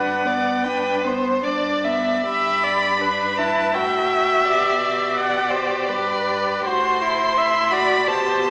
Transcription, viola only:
0.00 0.26 D4 soft
0.25 0.67 B3 soft
0.65 1.06 D4 soft
1.05 1.44 B3 soft
1.44 1.86 D4 soft
1.85 2.26 B3 soft
2.27 2.65 E5 medium
2.64 3.03 D5 soft
3.01 3.76 B4 soft
3.74 5.19 E5 medium
5.18 5.91 D5 soft
5.89 6.66 B4 soft
6.67 7.39 C5 soft
7.38 7.74 E5 soft
7.73 8.09 D5 soft
8.07 8.50 C5 soft

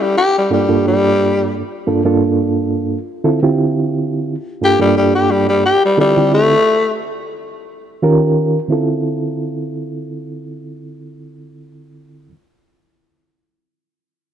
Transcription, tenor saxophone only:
0.01 0.16 G3 medium
0.18 0.35 G4 loud
0.38 0.51 G3 medium
0.53 0.85 G3 medium
0.87 1.53 G3 loud
4.64 4.80 G4 loud
4.81 4.95 G3 medium
4.97 5.13 G3 medium
5.15 5.32 G4 medium
5.31 5.47 G3 medium
5.49 5.63 G3 medium
5.65 5.82 G4 medium
5.85 5.98 G3 medium
6.00 6.32 G3 medium
6.34 6.99 A3 loud

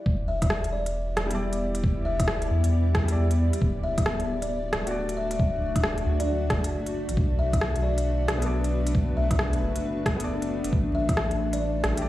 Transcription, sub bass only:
0.06 1.16 E1 loud
1.17 2.49 E1 loud
2.51 3.52 E2 loud
3.61 4.72 D1 loud
4.73 6.05 D1 loud
6.06 6.50 D2 loud
6.50 7.07 F#1 loud
7.09 7.17 A1 medium
7.17 8.27 B1 loud
8.28 9.60 B1 loud
9.62 10.63 F#1 loud
10.73 11.83 A1 loud
11.84 12.09 A1 loud

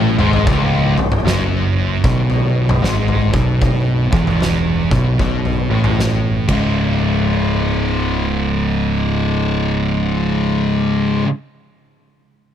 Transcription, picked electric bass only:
0.00 0.15 A1 medium
0.18 0.44 G#1 loud
0.47 0.94 C#1 medium
0.98 1.23 C#1 medium
1.24 1.99 F#1 medium
2.04 2.78 B1 medium
2.82 3.29 G#1 medium
3.34 4.08 B1 medium
4.12 4.87 E1 medium
4.91 5.17 B1 medium
5.20 5.67 B1 medium
5.70 6.45 A1 medium
6.49 11.21 C#1 medium

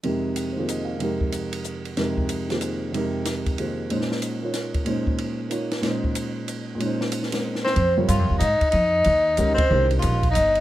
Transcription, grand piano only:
0.03 0.97 F2 soft
0.03 0.98 C3 soft
0.03 0.99 G#3 soft
0.03 1.00 D#4 soft
0.03 1.01 G4 soft
0.03 1.01 A#4 soft
0.52 0.58 C5 soft
0.57 1.00 D#3 soft
0.57 1.00 A#3 soft
0.57 1.01 F4 soft
0.57 1.01 G#4 soft
0.57 1.01 C5 soft
0.69 0.93 D#5 soft
0.85 1.07 F5 soft
0.99 1.95 F2 soft
0.99 1.96 C3 soft
0.99 1.96 G#3 soft
0.99 1.96 D#4 soft
0.99 1.96 G4 soft
1.04 1.97 A#4 soft
1.97 2.91 F2 soft
1.97 2.92 C3 soft
1.97 2.93 G#3 soft
1.97 2.94 D#4 soft
1.97 2.94 G4 soft
1.97 2.94 A#4 medium
2.49 2.93 D#3 soft
2.49 2.94 A#3 soft
2.49 2.94 F4 soft
2.49 2.95 G#4 soft
2.49 2.95 C5 soft
2.92 3.90 F2 soft
2.92 3.90 C3 soft
2.92 3.90 G#3 soft
2.92 3.90 D#4 soft
2.96 3.92 G4 soft
2.96 3.92 A#4 medium
3.58 3.90 D#3 soft
3.58 3.91 A#3 soft
3.58 3.91 F4 soft
3.58 3.91 G#4 soft
3.58 3.91 C5 soft
3.91 4.84 A#2 soft
3.91 4.85 G#3 soft
3.91 4.86 C#4 soft
3.91 4.42 D#4 soft
3.91 4.88 C5 soft
4.42 4.87 A#3 soft
4.42 4.87 D#4 soft
4.42 4.87 F4 soft
4.42 4.88 C#5 soft
4.85 5.80 A#2 soft
4.85 5.81 G#3 soft
4.85 5.82 C#4 soft
4.85 5.49 D#4 soft
4.90 5.85 C5 medium
5.49 5.83 A#3 soft
5.49 5.83 D#4 soft
5.49 5.84 F4 soft
5.49 5.84 C#5 soft
5.81 6.74 A#2 soft
5.81 6.76 G#3 soft
5.81 6.79 C#4 soft
5.81 6.81 D#4 soft
5.86 6.82 C5 medium
6.75 7.74 A#2 soft
6.75 7.30 G#3 soft
6.80 7.77 C#4 soft
6.80 7.78 D#4 soft
6.86 7.80 C5 medium
7.32 7.76 G#3 soft
7.32 7.77 C4 soft
7.32 7.78 A#4 soft
7.97 8.39 C3 soft
7.97 8.39 G3 medium
7.97 8.39 F4 soft
7.97 8.39 A#4 soft
7.97 8.39 C#5 medium
9.38 9.57 D#3 medium
9.38 9.57 G#3 medium
9.38 9.57 C#4 medium
9.38 9.57 G4 soft
9.38 9.57 A#4 medium
9.70 10.19 D#3 soft
9.70 10.19 G#3 soft
9.70 10.19 C#4 soft
9.70 10.19 G4 soft
9.70 10.19 A#4 medium

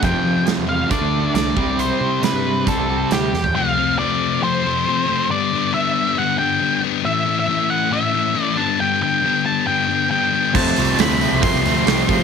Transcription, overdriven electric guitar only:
0.02 0.89 F2 medium
0.02 0.89 C3 medium
0.02 0.91 F3 medium
0.90 1.55 D3 medium
0.90 1.56 A3 medium
0.90 1.57 D4 medium
1.56 2.65 C3 medium
1.56 2.66 G3 medium
1.56 2.67 C4 medium
2.66 2.87 C3 medium
2.66 2.88 G3 medium
2.66 2.87 C4 medium
2.88 3.32 C3 medium
2.88 3.32 G3 medium
2.88 3.31 C4 medium
10.55 10.99 F2 medium
10.55 10.99 C3 loud
10.55 10.78 F3 loud
10.55 10.77 A3 loud
10.55 10.76 C4 loud
10.77 11.22 F3 medium
10.77 11.20 A3 medium
10.77 11.19 C4 medium
11.20 11.65 F3 medium
11.20 11.64 A3 medium
11.20 11.62 C4 medium
11.64 11.85 F3 medium
11.64 11.86 A3 medium
11.64 11.87 C4 medium
11.85 12.23 F2 loud
11.85 12.23 C3 loud
11.85 12.09 F3 loud
11.85 12.09 A3 medium
11.85 12.07 C4 loud
12.08 12.23 F3 medium
12.08 12.23 A3 medium
12.08 12.23 C4 medium

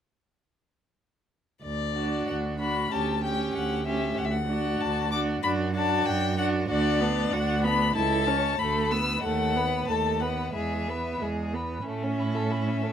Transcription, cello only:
1.63 2.20 D2 soft
2.27 2.84 D2 soft
2.91 3.47 D2 soft
3.55 4.11 D2 soft
4.18 4.73 D2 soft
4.81 5.36 D2 soft
5.42 5.98 F#2 medium
6.07 6.63 F#2 medium
6.69 7.25 D2 medium
7.32 7.88 D2 medium
7.96 8.52 C#2 medium
8.60 9.16 D2 medium
9.23 9.80 D#2 medium
9.88 10.46 D#2 soft
10.54 11.13 E2 soft
11.20 11.78 E2 soft
11.86 12.93 A2 soft

